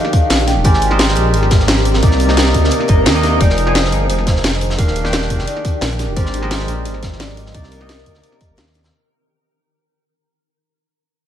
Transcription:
Already playing: D#3 F3 D4 G4 F5 G5
0.05 snare
0.13 kick, closed hi-hat
0.30 A#1, snare, closed hi-hat
0.39 closed hi-hat
0.47 G5, snare, closed hi-hat
0.56 D#1
0.64 G#1 G#3 C4 G4 A#4 C5 D5 G#5, kick, closed hi-hat
0.74 snare
0.82 G5, closed hi-hat
0.90 G#3 G4 A#4 C5 D#5, snare
0.99 snare, closed hi-hat
1.08 snare
1.15 A#1, closed hi-hat
1.34 G#1, closed hi-hat
1.43 snare
1.51 kick, snare, closed hi-hat
1.60 snare
1.68 snare, closed hi-hat
1.77 snare
1.85 closed hi-hat
1.94 snare
2.02 C2 C3 D#3 A#3 D#4 D5, kick, closed hi-hat
2.11 snare
2.20 closed hi-hat
2.28 C3 A#3 D#4 D#5, snare
2.37 snare, closed hi-hat
2.46 snare
2.54 D2, kick, closed hi-hat
2.64 snare
2.71 closed hi-hat
2.80 snare
2.88 G1 C3 A#3 D#4 D#5, kick, closed hi-hat
3.06 D#2, snare, closed hi-hat
3.15 C3 A#3 D#4 D#5, closed hi-hat
3.23 snare, closed hi-hat
3.40 F1 F3 D#4 G#4 D5 G5, kick, closed hi-hat
3.50 snare
3.58 closed hi-hat
3.66 F3 D#4 G#4 G#5, snare
3.75 C5, snare, closed hi-hat
3.85 snare
3.92 G1, closed hi-hat
4.09 F1 C5, closed hi-hat
4.18 snare
4.27 kick, snare, closed hi-hat
4.36 snare
4.44 snare, closed hi-hat
4.53 snare
4.61 closed hi-hat
4.70 snare
4.78 D#1 D#3 F3 D4 G4 A#4 F5, kick, closed hi-hat
4.88 snare
4.96 closed hi-hat
5.03 D#3 D4 G4 G5, snare
5.13 snare, closed hi-hat
5.21 snare
5.30 F1, kick, closed hi-hat
5.39 snare
5.47 D5, closed hi-hat
5.56 snare
5.65 kick, closed hi-hat
5.81 A#1 A#4, snare, closed hi-hat
5.91 closed hi-hat
5.99 snare, closed hi-hat
6.08 D#1
6.16 G#1 G#3 C4 G4 A#4 C5 D5, kick, closed hi-hat
6.26 snare
6.34 closed hi-hat
6.41 G#3 G4 A#4 C5 D#5, snare
6.51 snare, closed hi-hat
6.59 snare
6.68 A#1, closed hi-hat
6.85 G#1 C5, closed hi-hat
6.94 snare
7.03 kick, snare, closed hi-hat
7.12 snare
7.20 D5, snare, closed hi-hat
7.29 snare
7.37 D#5, closed hi-hat
7.46 snare
7.54 C2 C3 D#3 A#3 D#4 D5, kick, closed hi-hat
7.63 snare
7.72 closed hi-hat
7.80 C3 A#3 D#4 D#5, snare
7.89 snare, closed hi-hat
7.98 snare
8.06 D2, kick, closed hi-hat
8.14 snare
8.24 closed hi-hat
8.32 snare
8.41 kick, closed hi-hat
8.49 G1
8.57 D#2, snare, closed hi-hat
8.67 snare
8.74 snare, closed hi-hat
8.84 snare, closed hi-hat

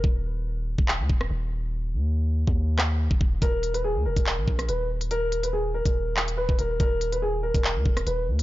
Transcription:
0.04 D#1, kick
0.78 D#1, kick
0.88 clap
1.00 D#2
1.10 D#1, kick
1.21 cross-stick
1.31 D#1
1.94 D#2
2.47 D#2, kick
2.79 cross-stick, clap
3.11 D#1, kick
3.21 D#1, kick
3.42 D#1 A#4, kick, closed hi-hat
3.63 closed hi-hat
3.74 B4, closed hi-hat
3.84 G#4
3.95 D#2
4.05 D#1 A#4
4.17 D#1, kick, closed hi-hat
4.26 clap
4.38 A#1
4.48 A#1, kick
4.59 cross-stick, closed hi-hat
4.69 D#1 B4, closed hi-hat
5.01 closed hi-hat
5.11 A#4, closed hi-hat
5.32 closed hi-hat
5.43 B4, closed hi-hat
5.53 G#4
5.74 A#4
5.86 D#1, kick, closed hi-hat
6.17 clap
6.28 closed hi-hat
6.37 B4
6.49 D1, kick
6.59 D#1 A#4, closed hi-hat
6.80 D#1 A#4, kick, closed hi-hat
7.01 closed hi-hat
7.12 B4, closed hi-hat
7.22 G#4
7.43 A#4
7.54 D#1, kick, closed hi-hat
7.64 clap
7.76 D#2
7.86 D#1, kick
7.97 cross-stick, closed hi-hat
8.07 D#1 B4, closed hi-hat
8.28 D#2
8.39 closed hi-hat

